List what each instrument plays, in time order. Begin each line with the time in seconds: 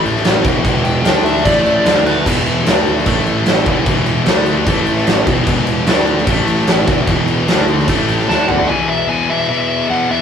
Already playing: picked electric bass A1, distorted electric guitar A2 E3 A3
0.06 crash
0.16 snare
0.24 snare, crash
0.44 picked electric bass E1, distorted electric guitar E2 B2 E3, kick, crash
0.64 picked electric bass E1, distorted electric guitar E2 B2 E3, kick, crash
0.84 lead electric guitar G5, crash
1.05 picked electric bass D2, distorted electric guitar D3 A3 D4, lead electric guitar G5, snare, crash
1.24 lead electric guitar E5, crash
1.37 snare
1.45 picked electric bass A1, distorted electric guitar A2 E3 A3, lead electric guitar D5, kick, crash
1.66 crash
1.86 picked electric bass D2, distorted electric guitar D3 A3 D4, snare, crash
2.06 lead electric guitar B4, crash
2.26 picked electric bass E1, distorted electric guitar E2 B2 E3, kick, crash
2.47 crash
2.66 picked electric bass D2, distorted electric guitar D3 A3 D4, snare, crash
2.87 crash
2.98 snare
3.06 picked electric bass A1, distorted electric guitar A2 E3 A3, kick, crash
3.27 crash
3.46 snare, crash
3.66 picked electric bass E1, distorted electric guitar E2 B2 E3, kick, crash
3.86 picked electric bass E1, distorted electric guitar E2 B2 E3, kick, crash
4.06 crash
4.26 picked electric bass D2, distorted electric guitar D3 A3 D4, snare, crash
4.46 crash
4.67 picked electric bass A1, distorted electric guitar A2 E3 A3, kick, crash
4.86 crash
4.98 snare
5.07 snare, crash
5.27 picked electric bass E1, distorted electric guitar E2 B2 E3, kick, crash
5.46 picked electric bass E1, distorted electric guitar E2 B2 E3, kick, crash
5.67 crash
5.87 picked electric bass D2, distorted electric guitar D3 A3 D4, snare, crash
6.07 crash
6.18 snare
6.27 picked electric bass A1, distorted electric guitar A2 E3 A3, kick, crash
6.47 crash
6.59 snare
6.67 snare, crash
6.88 picked electric bass E1, distorted electric guitar E2 B2 E3, kick, crash
7.07 picked electric bass E1, distorted electric guitar E2 B2 E3, kick, crash
7.28 crash
7.48 picked electric bass D2, distorted electric guitar D3 A3 D4, snare, crash
7.68 crash
7.78 snare
7.88 picked electric bass A1, distorted electric guitar A2 E3 A3, kick, crash
8.08 crash
8.19 snare
8.28 picked electric bass D2, distorted electric guitar D3 A3 D4, lead electric guitar A5, snare
8.48 lead electric guitar F#5, floor tom
8.68 distorted electric guitar E2 B2 E3, lead electric guitar G#5
8.88 lead electric guitar E5
9.08 distorted electric guitar E2 B2 E3, lead electric guitar G#5
9.29 distorted electric guitar E2 B2 E3, lead electric guitar E5
9.49 distorted electric guitar E2 B2 E3, lead electric guitar E5
9.90 distorted electric guitar E2 B2 E3, lead electric guitar F#5
10.09 distorted electric guitar E2 B2 E3, lead electric guitar E5